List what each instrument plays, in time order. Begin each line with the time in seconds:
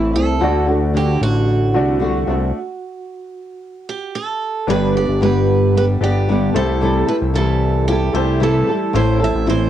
Already playing: analog synth bass A1, nylon-string guitar E3 A3 C4 E4
0.13 analog synth bass C2, nylon-string guitar A3 C4 E4, steel-string acoustic guitar A4
0.40 analog synth bass D2, nylon-string guitar D3 A3 D4 F#4, grand piano A3 F#4 D5
0.66 nylon-string guitar A3 D4 F#4
0.94 nylon-string guitar D3 A3 D4 F#4, steel-string acoustic guitar G4
1.21 analog synth bass A1, steel-string acoustic guitar F#4
1.74 analog synth bass C2, grand piano A3 F#4 D5, nylon-string guitar A3 D4 F#4
1.99 nylon-string guitar D3 A3 D4 F#4
2.27 analog synth bass C2, nylon-string guitar A3 D4 F#4
3.89 steel-string acoustic guitar G4
4.15 steel-string acoustic guitar A4
4.67 analog synth bass G1, nylon-string guitar G2 D3 G3 B3 D4 G4, grand piano B3 D4 G4 C#5, steel-string acoustic guitar B4
4.76 grand piano D5
4.95 nylon-string guitar G3 B3 D4 G4, steel-string acoustic guitar D5
5.09 analog synth bass G1
5.21 nylon-string guitar G2 D3 G3 B3 D4 G4, steel-string acoustic guitar B4
5.75 nylon-string guitar G3 B3 D4 G4, steel-string acoustic guitar B4
6.01 analog synth bass G1, nylon-string guitar G3 B3 D4 G4, grand piano B3 D4 G4 D5, steel-string acoustic guitar G4
6.29 nylon-string guitar G2 D3 G3 B3 D4 G4
6.54 analog synth bass C2, nylon-string guitar G3 E4 A4, grand piano A3 E4 G4 C5, steel-string acoustic guitar A4
6.81 nylon-string guitar C3 E3 G3 E4 A4
7.07 nylon-string guitar G3 E4 A4, steel-string acoustic guitar B4
7.22 analog synth bass C2
7.34 nylon-string guitar C3 E3 G3 E4 A4, steel-string acoustic guitar A4
7.88 nylon-string guitar E3 G3 E4 A4, steel-string acoustic guitar G4
8.13 analog synth bass C2, nylon-string guitar G3 E4 A4, grand piano A3 E4 G4 C5, steel-string acoustic guitar G4
8.40 nylon-string guitar C3 E3 G3 E4 A4, steel-string acoustic guitar A4
8.67 nylon-string guitar G3 E4 A4
8.93 analog synth bass A1, nylon-string guitar A2 E3 C4 E4 A4, grand piano A3 C4 E4 C5, steel-string acoustic guitar C5
9.19 nylon-string guitar C4 E4 A4
9.24 steel-string acoustic guitar E5
9.35 analog synth bass A1
9.46 nylon-string guitar A2 E3 C4 E4 A4, steel-string acoustic guitar C5